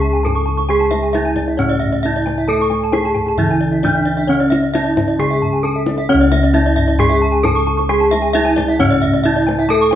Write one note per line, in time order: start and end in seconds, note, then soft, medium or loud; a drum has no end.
0.00 1.58 C#2 medium
0.00 0.68 G#3 soft
0.00 0.21 C#4 medium
0.00 0.23 G#4 medium
0.00 0.13 A5 soft
0.13 0.24 G#5 soft
0.23 0.33 D4 soft
0.23 0.69 A4 medium
0.23 0.35 A5 medium
0.23 kendang slap soft
0.23 kendang high soft
0.23 kendang low soft
0.35 0.47 C#6 soft
0.46 0.57 A5 soft
0.46 kendang slap soft
0.57 0.69 C#6 soft
0.57 kendang slap soft
0.69 1.59 G#3 soft
0.69 2.00 G#4 medium
0.69 1.15 G#4 medium
0.69 0.80 G#5 medium
0.80 0.91 A5 soft
0.80 kendang slap soft
0.91 1.02 E5 medium
0.91 kendang slap soft
0.91 kendang high soft
1.03 1.14 G#5 soft
1.13 1.22 D4 soft
1.13 1.59 E4 medium
1.13 1.25 E5 medium
1.13 kendang slap soft
1.13 kendang high soft
1.25 1.36 G#5 medium
1.25 kendang slap soft
1.36 1.48 D5 medium
1.36 kendang slap soft
1.36 kendang high soft
1.36 kendang low soft
1.48 1.59 E5 soft
1.48 kendang slap soft
1.57 2.90 A2 medium
1.57 2.49 C#3 soft
1.57 2.04 C#4 medium
1.57 1.69 C#5 soft
1.57 kendang low medium
1.69 1.81 D5 medium
1.69 kendang slap soft
1.80 1.92 E5 medium
1.80 kendang low soft
1.93 2.04 D5 soft
2.03 2.12 D4 soft
2.03 2.50 E4 soft
2.03 2.15 E5 medium
2.03 kendang slap soft
2.16 2.27 D5 soft
2.26 2.37 G#5 soft
2.26 kendang slap soft
2.26 kendang high soft
2.38 2.49 E5 soft
2.38 kendang slap soft
2.48 3.39 A3 medium
2.48 3.80 A4 medium
2.48 2.94 A4 medium
2.48 2.60 A5 medium
2.59 2.72 C#6 soft
2.59 kendang slap soft
2.70 2.82 G#5 medium
2.70 kendang slap soft
2.70 kendang high soft
2.84 2.95 A5 soft
2.92 3.01 D4 soft
2.92 3.39 G#4 medium
2.92 3.05 G#5 medium
2.92 kendang slap soft
2.92 kendang high soft
3.04 3.17 A5 medium
3.04 kendang slap soft
3.15 3.27 G#5 soft
3.15 kendang slap soft
3.15 kendang low soft
3.26 3.39 A5 soft
3.26 kendang slap soft
3.38 4.70 C#3 soft
3.38 4.29 E3 medium
3.38 3.84 E4 medium
3.38 3.50 E5 soft
3.38 kendang low medium
3.49 3.62 G#5 medium
3.49 kendang slap soft
3.61 3.72 D5 soft
3.72 3.84 E5 soft
3.83 3.92 D4 soft
3.83 4.30 D4 medium
3.83 3.95 D5 medium
3.83 kendang slap soft
3.83 kendang high soft
3.83 kendang low soft
3.95 4.06 E5 soft
4.05 4.17 D5 soft
4.05 kendang slap soft
4.17 4.29 E5 medium
4.17 kendang slap soft
4.27 5.19 C#3 medium
4.27 5.60 C#4 medium
4.27 4.74 C#4 medium
4.27 4.40 C#5 medium
4.40 4.52 D5 soft
4.40 kendang slap soft
4.50 4.62 E5 medium
4.50 kendang slap soft
4.50 kendang high soft
4.63 4.74 D5 soft
4.74 4.83 D4 soft
4.74 5.20 E4 medium
4.74 4.85 E5 medium
4.74 kendang slap soft
4.74 kendang high soft
4.84 4.96 D5 soft
4.84 kendang slap soft
4.97 5.08 E5 soft
4.97 kendang slap soft
4.97 kendang high soft
4.97 kendang low soft
5.08 5.19 D5 soft
5.08 kendang slap soft
5.19 6.50 C#3 medium
5.19 6.09 G#3 soft
5.19 5.64 G#4 medium
5.19 5.31 G#5 soft
5.19 kendang low soft
5.31 5.42 E5 medium
5.31 kendang slap soft
5.42 5.53 A5 medium
5.42 kendang low soft
5.53 5.64 G#5 soft
5.63 5.72 D4 soft
5.63 6.09 A4 medium
5.63 5.75 A5 medium
5.63 kendang slap soft
5.76 5.87 E5 soft
5.86 5.99 D5 soft
5.86 kendang slap soft
5.86 kendang high soft
5.97 6.09 E5 medium
5.97 kendang slap soft
6.09 6.99 C#3 medium
6.09 6.54 C#4 medium
6.09 7.40 C#4 medium
6.09 6.21 C#5 medium
6.14 8.78 C#2 medium
6.20 6.32 D5 medium
6.20 kendang slap soft
6.32 6.43 E5 medium
6.32 kendang slap soft
6.32 kendang high medium
6.43 6.54 D5 medium
6.54 6.62 D4 soft
6.54 6.99 E4 medium
6.54 6.66 E5 medium
6.54 kendang slap soft
6.54 kendang high soft
6.66 6.77 D5 medium
6.66 kendang slap soft
6.76 6.88 E5 medium
6.76 kendang slap soft
6.76 kendang low medium
6.88 6.99 D5 medium
6.88 kendang slap soft
6.99 7.88 G#3 medium
6.99 7.45 G#4 medium
6.99 7.10 G#5 medium
6.99 kendang low medium
7.09 7.21 E5 medium
7.09 kendang slap soft
7.22 7.33 A5 medium
7.32 7.44 G#5 medium
7.44 7.52 D4 soft
7.44 7.89 A4 medium
7.44 7.56 A5 medium
7.44 kendang slap soft
7.44 kendang high soft
7.44 kendang low soft
7.55 7.67 C#6 medium
7.67 7.78 A5 medium
7.67 kendang slap soft
7.77 7.89 C#6 medium
7.77 kendang slap soft
7.89 8.79 G#3 medium
7.89 9.20 G#4 medium
7.89 8.34 G#4 medium
7.89 8.01 G#5 medium
8.00 8.12 A5 medium
8.00 kendang slap soft
8.11 8.23 E5 medium
8.11 kendang slap soft
8.11 kendang high soft
8.22 8.34 G#5 medium
8.33 8.42 D4 soft
8.33 8.80 E4 medium
8.33 8.45 E5 medium
8.33 kendang slap soft
8.33 kendang high soft
8.45 8.57 G#5 medium
8.45 kendang slap soft
8.56 8.68 D5 medium
8.56 kendang slap soft
8.56 kendang high soft
8.56 kendang low medium
8.68 8.80 E5 medium
8.68 kendang slap soft
8.79 9.95 A2 medium
8.79 9.69 C#3 medium
8.79 9.25 C#4 medium
8.79 8.91 C#5 medium
8.79 kendang low medium
8.91 9.02 D5 medium
8.91 kendang slap soft
9.02 9.13 E5 medium
9.02 kendang low soft
9.13 9.25 D5 medium
9.24 9.33 D4 soft
9.24 9.70 E4 medium
9.24 9.35 E5 medium
9.24 kendang slap soft
9.36 9.47 D5 medium
9.47 9.58 G#5 medium
9.47 kendang slap soft
9.47 kendang high medium
9.59 9.70 E5 medium
9.59 kendang slap soft
9.69 9.95 A3 medium
9.69 9.95 A4 medium
9.69 9.80 A5 medium
9.81 9.92 C#6 medium
9.91 9.95 G#5 medium